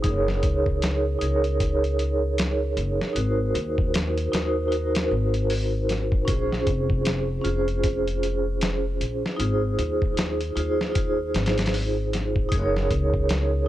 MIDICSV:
0, 0, Header, 1, 4, 480
1, 0, Start_track
1, 0, Key_signature, -5, "minor"
1, 0, Tempo, 779221
1, 29, Time_signature, 4, 2, 24, 8
1, 8429, End_track
2, 0, Start_track
2, 0, Title_t, "Vibraphone"
2, 0, Program_c, 0, 11
2, 0, Control_c, 0, 64, 127
2, 15, Note_on_c, 0, 63, 84
2, 29, Note_on_c, 0, 68, 79
2, 38, Control_c, 0, 64, 0
2, 47, Note_on_c, 0, 70, 74
2, 63, Note_on_c, 0, 73, 97
2, 145, Control_c, 0, 64, 127
2, 718, Note_off_c, 0, 63, 0
2, 725, Note_off_c, 0, 68, 0
2, 731, Note_on_c, 0, 63, 85
2, 734, Note_off_c, 0, 70, 0
2, 742, Note_off_c, 0, 73, 0
2, 747, Note_on_c, 0, 68, 78
2, 764, Note_on_c, 0, 70, 80
2, 783, Note_on_c, 0, 73, 95
2, 1916, Note_off_c, 0, 63, 0
2, 1925, Note_off_c, 0, 68, 0
2, 1928, Note_on_c, 0, 63, 79
2, 1933, Note_off_c, 0, 70, 0
2, 1943, Note_off_c, 0, 73, 0
2, 1944, Note_on_c, 0, 66, 70
2, 1957, Control_c, 0, 64, 0
2, 1961, Note_on_c, 0, 70, 70
2, 1979, Note_on_c, 0, 72, 80
2, 2051, Control_c, 0, 64, 127
2, 2635, Note_off_c, 0, 63, 0
2, 2643, Note_off_c, 0, 66, 0
2, 2651, Note_off_c, 0, 70, 0
2, 2660, Note_off_c, 0, 72, 0
2, 2661, Note_on_c, 0, 63, 85
2, 2670, Note_on_c, 0, 66, 76
2, 2677, Note_on_c, 0, 70, 76
2, 2686, Note_on_c, 0, 72, 91
2, 2876, Note_off_c, 0, 63, 0
2, 2883, Note_on_c, 0, 63, 74
2, 2886, Note_off_c, 0, 66, 0
2, 2889, Note_off_c, 0, 70, 0
2, 2894, Note_off_c, 0, 72, 0
2, 2902, Note_on_c, 0, 66, 67
2, 2920, Note_on_c, 0, 70, 69
2, 3832, Note_off_c, 0, 63, 0
2, 3842, Note_off_c, 0, 66, 0
2, 3850, Note_on_c, 0, 61, 81
2, 3851, Note_off_c, 0, 70, 0
2, 3864, Note_on_c, 0, 65, 73
2, 3878, Control_c, 0, 64, 0
2, 3882, Note_on_c, 0, 68, 77
2, 3900, Note_on_c, 0, 72, 89
2, 3988, Control_c, 0, 64, 127
2, 4556, Note_off_c, 0, 61, 0
2, 4563, Note_off_c, 0, 65, 0
2, 4568, Note_on_c, 0, 61, 88
2, 4572, Note_off_c, 0, 68, 0
2, 4581, Note_off_c, 0, 72, 0
2, 4585, Note_on_c, 0, 65, 77
2, 4602, Note_on_c, 0, 68, 82
2, 4616, Note_on_c, 0, 72, 95
2, 5755, Note_off_c, 0, 61, 0
2, 5763, Note_off_c, 0, 65, 0
2, 5770, Note_on_c, 0, 63, 84
2, 5772, Note_off_c, 0, 68, 0
2, 5779, Note_off_c, 0, 72, 0
2, 5787, Note_on_c, 0, 65, 74
2, 5796, Control_c, 0, 64, 0
2, 5804, Note_on_c, 0, 68, 70
2, 5820, Note_on_c, 0, 72, 88
2, 5913, Control_c, 0, 64, 127
2, 6476, Note_off_c, 0, 63, 0
2, 6484, Note_off_c, 0, 65, 0
2, 6493, Note_off_c, 0, 68, 0
2, 6501, Note_off_c, 0, 72, 0
2, 6503, Note_on_c, 0, 63, 79
2, 6509, Note_on_c, 0, 65, 82
2, 6517, Note_on_c, 0, 68, 75
2, 6528, Note_on_c, 0, 72, 91
2, 6718, Note_off_c, 0, 63, 0
2, 6725, Note_off_c, 0, 65, 0
2, 6726, Note_on_c, 0, 63, 70
2, 6730, Note_off_c, 0, 68, 0
2, 6735, Note_off_c, 0, 72, 0
2, 6745, Note_on_c, 0, 65, 66
2, 6760, Note_on_c, 0, 68, 64
2, 6777, Note_on_c, 0, 72, 84
2, 7674, Note_off_c, 0, 63, 0
2, 7683, Note_off_c, 0, 65, 0
2, 7691, Note_off_c, 0, 68, 0
2, 7693, Note_on_c, 0, 63, 84
2, 7699, Note_off_c, 0, 72, 0
2, 7714, Note_on_c, 0, 68, 77
2, 7717, Control_c, 0, 64, 0
2, 7730, Note_on_c, 0, 70, 77
2, 7746, Note_on_c, 0, 73, 94
2, 7824, Control_c, 0, 64, 127
2, 8397, Note_off_c, 0, 63, 0
2, 8408, Note_off_c, 0, 68, 0
2, 8416, Note_off_c, 0, 70, 0
2, 8424, Note_off_c, 0, 73, 0
2, 8429, End_track
3, 0, Start_track
3, 0, Title_t, "Upright bass"
3, 0, Program_c, 1, 32
3, 26, Note_on_c, 1, 30, 94
3, 244, Note_off_c, 1, 30, 0
3, 266, Note_on_c, 1, 37, 87
3, 729, Note_off_c, 1, 37, 0
3, 747, Note_on_c, 1, 37, 74
3, 1689, Note_off_c, 1, 37, 0
3, 1705, Note_on_c, 1, 30, 84
3, 1832, Note_off_c, 1, 30, 0
3, 1943, Note_on_c, 1, 32, 93
3, 2162, Note_off_c, 1, 32, 0
3, 2184, Note_on_c, 1, 39, 94
3, 2647, Note_off_c, 1, 39, 0
3, 2669, Note_on_c, 1, 39, 74
3, 3130, Note_off_c, 1, 39, 0
3, 3151, Note_on_c, 1, 32, 83
3, 3851, Note_off_c, 1, 32, 0
3, 3869, Note_on_c, 1, 34, 91
3, 4085, Note_off_c, 1, 34, 0
3, 4107, Note_on_c, 1, 29, 86
3, 4569, Note_off_c, 1, 29, 0
3, 4589, Note_on_c, 1, 29, 73
3, 5530, Note_off_c, 1, 29, 0
3, 5547, Note_on_c, 1, 34, 77
3, 5673, Note_off_c, 1, 34, 0
3, 5787, Note_on_c, 1, 32, 94
3, 6004, Note_off_c, 1, 32, 0
3, 6027, Note_on_c, 1, 39, 93
3, 6489, Note_off_c, 1, 39, 0
3, 6506, Note_on_c, 1, 39, 72
3, 6969, Note_off_c, 1, 39, 0
3, 6989, Note_on_c, 1, 32, 82
3, 7690, Note_off_c, 1, 32, 0
3, 7713, Note_on_c, 1, 30, 94
3, 7927, Note_off_c, 1, 30, 0
3, 7951, Note_on_c, 1, 37, 98
3, 8411, Note_off_c, 1, 37, 0
3, 8429, End_track
4, 0, Start_track
4, 0, Title_t, "Drums"
4, 23, Note_on_c, 9, 42, 82
4, 25, Note_on_c, 9, 36, 112
4, 85, Note_off_c, 9, 42, 0
4, 87, Note_off_c, 9, 36, 0
4, 174, Note_on_c, 9, 38, 43
4, 235, Note_off_c, 9, 38, 0
4, 264, Note_on_c, 9, 42, 64
4, 266, Note_on_c, 9, 36, 88
4, 325, Note_off_c, 9, 42, 0
4, 327, Note_off_c, 9, 36, 0
4, 408, Note_on_c, 9, 36, 81
4, 469, Note_off_c, 9, 36, 0
4, 506, Note_on_c, 9, 42, 83
4, 515, Note_on_c, 9, 38, 104
4, 568, Note_off_c, 9, 42, 0
4, 577, Note_off_c, 9, 38, 0
4, 747, Note_on_c, 9, 42, 67
4, 808, Note_off_c, 9, 42, 0
4, 887, Note_on_c, 9, 42, 40
4, 949, Note_off_c, 9, 42, 0
4, 987, Note_on_c, 9, 36, 106
4, 987, Note_on_c, 9, 42, 81
4, 1048, Note_off_c, 9, 42, 0
4, 1049, Note_off_c, 9, 36, 0
4, 1133, Note_on_c, 9, 42, 41
4, 1195, Note_off_c, 9, 42, 0
4, 1227, Note_on_c, 9, 42, 61
4, 1288, Note_off_c, 9, 42, 0
4, 1467, Note_on_c, 9, 42, 86
4, 1476, Note_on_c, 9, 38, 114
4, 1529, Note_off_c, 9, 42, 0
4, 1537, Note_off_c, 9, 38, 0
4, 1706, Note_on_c, 9, 42, 66
4, 1768, Note_off_c, 9, 42, 0
4, 1857, Note_on_c, 9, 38, 44
4, 1919, Note_off_c, 9, 38, 0
4, 1946, Note_on_c, 9, 42, 84
4, 2008, Note_off_c, 9, 42, 0
4, 2188, Note_on_c, 9, 42, 66
4, 2250, Note_off_c, 9, 42, 0
4, 2329, Note_on_c, 9, 36, 91
4, 2390, Note_off_c, 9, 36, 0
4, 2428, Note_on_c, 9, 42, 85
4, 2437, Note_on_c, 9, 38, 110
4, 2490, Note_off_c, 9, 42, 0
4, 2498, Note_off_c, 9, 38, 0
4, 2572, Note_on_c, 9, 42, 38
4, 2634, Note_off_c, 9, 42, 0
4, 2670, Note_on_c, 9, 42, 74
4, 2678, Note_on_c, 9, 38, 93
4, 2731, Note_off_c, 9, 42, 0
4, 2740, Note_off_c, 9, 38, 0
4, 2908, Note_on_c, 9, 42, 56
4, 2970, Note_off_c, 9, 42, 0
4, 3050, Note_on_c, 9, 42, 73
4, 3059, Note_on_c, 9, 38, 94
4, 3112, Note_off_c, 9, 42, 0
4, 3120, Note_off_c, 9, 38, 0
4, 3290, Note_on_c, 9, 42, 50
4, 3351, Note_off_c, 9, 42, 0
4, 3388, Note_on_c, 9, 46, 75
4, 3449, Note_off_c, 9, 46, 0
4, 3630, Note_on_c, 9, 42, 63
4, 3639, Note_on_c, 9, 38, 36
4, 3692, Note_off_c, 9, 42, 0
4, 3700, Note_off_c, 9, 38, 0
4, 3769, Note_on_c, 9, 36, 97
4, 3831, Note_off_c, 9, 36, 0
4, 3866, Note_on_c, 9, 42, 87
4, 3868, Note_on_c, 9, 36, 107
4, 3928, Note_off_c, 9, 42, 0
4, 3929, Note_off_c, 9, 36, 0
4, 4019, Note_on_c, 9, 38, 42
4, 4081, Note_off_c, 9, 38, 0
4, 4107, Note_on_c, 9, 42, 63
4, 4108, Note_on_c, 9, 36, 89
4, 4169, Note_off_c, 9, 36, 0
4, 4169, Note_off_c, 9, 42, 0
4, 4249, Note_on_c, 9, 36, 85
4, 4311, Note_off_c, 9, 36, 0
4, 4345, Note_on_c, 9, 42, 84
4, 4354, Note_on_c, 9, 38, 103
4, 4407, Note_off_c, 9, 42, 0
4, 4415, Note_off_c, 9, 38, 0
4, 4587, Note_on_c, 9, 42, 66
4, 4649, Note_off_c, 9, 42, 0
4, 4730, Note_on_c, 9, 42, 41
4, 4792, Note_off_c, 9, 42, 0
4, 4826, Note_on_c, 9, 42, 85
4, 4829, Note_on_c, 9, 36, 101
4, 4888, Note_off_c, 9, 42, 0
4, 4890, Note_off_c, 9, 36, 0
4, 4974, Note_on_c, 9, 42, 40
4, 5035, Note_off_c, 9, 42, 0
4, 5070, Note_on_c, 9, 42, 61
4, 5131, Note_off_c, 9, 42, 0
4, 5305, Note_on_c, 9, 42, 86
4, 5314, Note_on_c, 9, 38, 114
4, 5367, Note_off_c, 9, 42, 0
4, 5375, Note_off_c, 9, 38, 0
4, 5550, Note_on_c, 9, 42, 64
4, 5611, Note_off_c, 9, 42, 0
4, 5702, Note_on_c, 9, 38, 48
4, 5764, Note_off_c, 9, 38, 0
4, 5788, Note_on_c, 9, 42, 82
4, 5850, Note_off_c, 9, 42, 0
4, 6028, Note_on_c, 9, 42, 65
4, 6090, Note_off_c, 9, 42, 0
4, 6171, Note_on_c, 9, 36, 84
4, 6233, Note_off_c, 9, 36, 0
4, 6266, Note_on_c, 9, 42, 81
4, 6275, Note_on_c, 9, 38, 102
4, 6328, Note_off_c, 9, 42, 0
4, 6337, Note_off_c, 9, 38, 0
4, 6410, Note_on_c, 9, 42, 39
4, 6471, Note_off_c, 9, 42, 0
4, 6510, Note_on_c, 9, 42, 68
4, 6571, Note_off_c, 9, 42, 0
4, 6659, Note_on_c, 9, 38, 53
4, 6720, Note_off_c, 9, 38, 0
4, 6747, Note_on_c, 9, 42, 88
4, 6749, Note_on_c, 9, 36, 105
4, 6809, Note_off_c, 9, 42, 0
4, 6811, Note_off_c, 9, 36, 0
4, 6988, Note_on_c, 9, 42, 63
4, 6997, Note_on_c, 9, 38, 86
4, 7050, Note_off_c, 9, 42, 0
4, 7059, Note_off_c, 9, 38, 0
4, 7060, Note_on_c, 9, 42, 62
4, 7069, Note_on_c, 9, 38, 79
4, 7122, Note_off_c, 9, 42, 0
4, 7131, Note_off_c, 9, 38, 0
4, 7131, Note_on_c, 9, 42, 63
4, 7140, Note_on_c, 9, 38, 79
4, 7182, Note_off_c, 9, 42, 0
4, 7182, Note_on_c, 9, 42, 61
4, 7191, Note_off_c, 9, 38, 0
4, 7191, Note_on_c, 9, 38, 81
4, 7232, Note_on_c, 9, 46, 76
4, 7244, Note_off_c, 9, 42, 0
4, 7252, Note_off_c, 9, 38, 0
4, 7294, Note_off_c, 9, 46, 0
4, 7474, Note_on_c, 9, 42, 67
4, 7483, Note_on_c, 9, 38, 39
4, 7536, Note_off_c, 9, 42, 0
4, 7544, Note_off_c, 9, 38, 0
4, 7612, Note_on_c, 9, 36, 94
4, 7674, Note_off_c, 9, 36, 0
4, 7711, Note_on_c, 9, 36, 113
4, 7711, Note_on_c, 9, 42, 89
4, 7773, Note_off_c, 9, 36, 0
4, 7773, Note_off_c, 9, 42, 0
4, 7863, Note_on_c, 9, 38, 45
4, 7925, Note_off_c, 9, 38, 0
4, 7950, Note_on_c, 9, 42, 66
4, 7951, Note_on_c, 9, 36, 88
4, 8012, Note_off_c, 9, 42, 0
4, 8013, Note_off_c, 9, 36, 0
4, 8093, Note_on_c, 9, 36, 87
4, 8154, Note_off_c, 9, 36, 0
4, 8189, Note_on_c, 9, 42, 77
4, 8197, Note_on_c, 9, 38, 105
4, 8250, Note_off_c, 9, 42, 0
4, 8259, Note_off_c, 9, 38, 0
4, 8429, End_track
0, 0, End_of_file